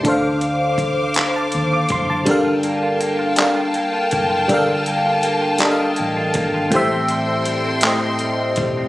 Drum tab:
HH |xxxxxx|xxxxxx|xxxxxx|xxxxxx|
CP |---x--|---x--|---x--|---x--|
BD |o-o--o|o----o|o----o|o----o|